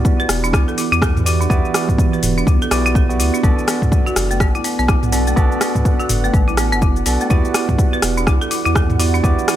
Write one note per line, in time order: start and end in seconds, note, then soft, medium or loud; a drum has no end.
0.00 3.40 E3 medium
0.00 1.23 B3 loud
0.00 9.56 B3 medium
0.00 1.23 E4 medium
0.00 1.23 F#4 medium
0.00 1.23 G4 medium
0.00 1.23 D5 loud
0.00 1.46 F#5 medium
0.05 kick loud
0.05 shaker medium
0.20 0.29 B4 medium
0.20 shaker soft
0.29 0.55 E1 loud
0.29 cross-stick medium
0.29 open hi-hat medium
0.29 shaker loud
0.44 0.49 D4 medium
0.44 shaker soft
0.53 0.65 D2 medium
0.53 0.66 E4 medium
0.53 kick loud
0.53 cross-stick loud
0.53 shaker medium
0.68 0.77 A4 medium
0.68 shaker soft
0.78 0.91 E4 medium
0.78 open hi-hat medium
0.78 shaker loud
0.92 1.47 E2 medium
0.92 0.97 E4 loud
0.92 shaker soft
1.02 1.16 A4 medium
1.02 kick loud
1.02 cross-stick loud
1.02 shaker medium
1.17 mid tom medium
1.17 shaker soft
1.26 1.48 B3 medium
1.26 1.48 E4 medium
1.26 1.34 E4 medium
1.26 1.48 F#4 medium
1.26 1.48 G4 medium
1.26 1.48 D5 medium
1.26 open hi-hat medium
1.26 shaker loud
1.41 1.46 D4 medium
1.41 shaker soft
1.50 1.62 E2 loud
1.50 2.69 B3 loud
1.50 2.69 E4 medium
1.50 1.58 E4 medium
1.50 3.42 E4 medium
1.50 2.69 F#4 medium
1.50 2.69 G4 medium
1.50 2.69 D5 loud
1.50 kick loud
1.50 shaker medium
1.65 shaker soft
1.74 1.87 E4 medium
1.74 cross-stick medium
1.74 open hi-hat medium
1.74 shaker loud
1.89 kick medium
1.89 mid tom medium
1.89 shaker soft
1.98 kick loud
1.98 shaker medium
2.13 2.22 B4 medium
2.13 shaker soft
2.23 2.43 E1 loud
2.23 mid tom medium
2.23 open hi-hat medium
2.23 shaker loud
2.38 2.43 D4 medium
2.38 shaker soft
2.47 2.58 D2 loud
2.47 2.60 E4 medium
2.47 kick loud
2.47 shaker medium
2.62 2.70 A4 medium
2.62 shaker soft
2.71 3.21 B1 medium
2.71 3.06 B3 medium
2.71 3.06 E4 medium
2.71 2.84 E4 medium
2.71 3.06 F#4 medium
2.71 3.06 G4 medium
2.71 3.06 D5 loud
2.71 cross-stick medium
2.71 open hi-hat medium
2.71 shaker medium
2.86 2.91 E4 loud
2.86 shaker soft
2.95 3.09 A4 medium
2.95 kick loud
2.95 shaker medium
3.09 3.41 B3 medium
3.09 3.41 E4 medium
3.09 3.41 F#4 medium
3.09 3.41 G4 medium
3.09 3.41 D5 loud
3.09 shaker soft
3.19 3.31 D2 loud
3.19 3.27 E4 medium
3.19 open hi-hat medium
3.19 shaker loud
3.34 3.39 D4 medium
3.34 shaker soft
3.43 3.55 B1 medium
3.43 5.10 B3 loud
3.43 3.51 B3 medium
3.43 5.10 D4 medium
3.43 5.10 F#4 medium
3.43 5.10 A4 medium
3.43 7.27 B4 medium
3.43 5.10 D5 loud
3.43 9.56 F#5 medium
3.43 kick loud
3.43 shaker medium
3.59 shaker soft
3.68 3.81 B3 medium
3.68 cross-stick medium
3.68 open hi-hat medium
3.68 shaker medium
3.82 kick medium
3.82 mid tom medium
3.82 shaker soft
3.92 kick loud
3.92 shaker medium
4.06 4.16 F#4 medium
4.06 shaker soft
4.16 4.42 F#1 loud
4.16 cross-stick medium
4.16 open hi-hat medium
4.16 shaker medium
4.31 4.36 A3 medium
4.31 shaker soft
4.40 4.52 A1 medium
4.40 4.53 B3 medium
4.40 kick loud
4.40 cross-stick medium
4.40 shaker medium
4.55 4.64 E4 medium
4.55 shaker soft
4.64 4.77 B3 medium
4.64 open hi-hat medium
4.64 shaker medium
4.79 5.34 B1 medium
4.79 4.84 B3 loud
4.79 shaker soft
4.88 5.02 E4 medium
4.88 kick loud
4.88 cross-stick medium
4.88 shaker medium
5.03 mid tom medium
5.03 shaker soft
5.12 5.34 B3 medium
5.12 5.21 B3 medium
5.12 5.34 D4 medium
5.12 5.34 F#4 medium
5.12 5.34 A4 medium
5.12 5.34 D5 medium
5.12 open hi-hat medium
5.12 shaker medium
5.27 5.32 A3 medium
5.27 shaker soft
5.36 5.49 B1 medium
5.36 7.04 B3 loud
5.36 5.45 B3 medium
5.36 7.04 D4 medium
5.36 7.04 F#4 medium
5.36 7.04 A4 medium
5.36 7.04 D5 loud
5.36 kick loud
5.36 shaker medium
5.52 shaker soft
5.61 5.74 B3 medium
5.61 cross-stick medium
5.61 open hi-hat medium
5.61 shaker medium
5.75 kick medium
5.75 mid tom medium
5.75 shaker soft
5.85 kick loud
5.85 shaker soft
6.00 6.09 F#4 medium
6.00 shaker soft
6.09 6.30 F#1 loud
6.09 mid tom medium
6.09 open hi-hat medium
6.09 shaker medium
6.24 6.29 A3 medium
6.24 shaker soft
6.34 6.74 A1 loud
6.34 6.47 B3 medium
6.34 kick loud
6.34 shaker medium
6.48 6.57 E4 medium
6.48 shaker soft
6.57 6.71 B3 medium
6.57 cross-stick medium
6.57 open hi-hat medium
6.57 shaker medium
6.72 7.03 F#1 medium
6.72 6.78 B3 loud
6.72 shaker soft
6.82 6.96 E4 medium
6.82 kick loud
6.82 shaker medium
6.96 shaker soft
7.06 7.18 B1 loud
7.06 7.28 B3 medium
7.06 7.14 B3 medium
7.06 7.28 D4 medium
7.06 7.28 F#4 medium
7.06 7.28 A4 medium
7.06 7.28 D5 medium
7.06 open hi-hat medium
7.06 shaker medium
7.21 7.26 A3 medium
7.21 shaker soft
7.30 7.42 E2 loud
7.30 9.56 E3 medium
7.30 8.97 B3 loud
7.30 8.97 E4 medium
7.30 7.38 E4 medium
7.30 8.97 F#4 medium
7.30 8.97 G4 medium
7.30 8.97 D5 loud
7.30 kick loud
7.30 shaker medium
7.45 shaker soft
7.54 7.68 E4 medium
7.54 cross-stick medium
7.54 open hi-hat loud
7.54 shaker medium
7.69 kick medium
7.69 mid tom medium
7.69 shaker soft
7.78 kick loud
7.78 shaker medium
7.93 8.03 B4 medium
7.93 shaker soft
8.02 8.28 E1 loud
8.02 cross-stick medium
8.02 open hi-hat loud
8.02 shaker medium
8.17 8.23 D4 medium
8.17 shaker soft
8.27 8.39 D2 medium
8.27 8.40 E4 medium
8.27 kick loud
8.27 cross-stick medium
8.27 shaker medium
8.41 8.50 A4 medium
8.41 shaker soft
8.51 8.64 E4 medium
8.51 open hi-hat medium
8.51 shaker medium
8.65 9.21 E2 medium
8.65 8.71 E4 loud
8.65 shaker soft
8.75 8.89 A4 medium
8.75 kick loud
8.75 cross-stick medium
8.75 shaker medium
8.90 mid tom loud
8.90 shaker soft
8.99 9.21 B3 medium
8.99 9.07 E4 medium
8.99 9.22 E4 medium
8.99 9.21 F#4 medium
8.99 9.21 G4 medium
8.99 9.22 D5 medium
8.99 open hi-hat loud
8.99 shaker medium
9.14 9.19 D4 medium
9.14 shaker soft
9.23 9.36 E2 loud
9.23 9.56 B3 loud
9.23 9.56 E4 medium
9.23 9.32 E4 medium
9.23 9.56 F#4 medium
9.23 9.56 G4 medium
9.23 9.56 D5 loud
9.23 kick loud
9.23 shaker medium
9.39 shaker soft
9.48 9.56 E4 medium
9.48 cross-stick loud
9.48 open hi-hat medium
9.48 shaker medium